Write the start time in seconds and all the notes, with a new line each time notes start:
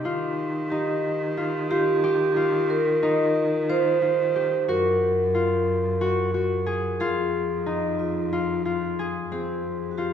Already playing: D#4 G4
0.04 D#3 D#4 F4
0.70 D#4 G4
1.37 F4
1.71 F4 G4
2.04 G4
2.36 F4
2.70 A#4
3.03 D#4
3.69 F4 C5
4.02 F4
4.36 G4
4.68 F#2 F#4 A#4
5.35 F4
6.01 F#4
6.34 F#4
6.66 G#4
7.00 F2 F4 G#4
7.66 D#4
7.99 F4
8.33 F4
8.65 F4
8.99 G#4
9.32 F2 C4 G#4
9.91 F#4
9.98 F4 G4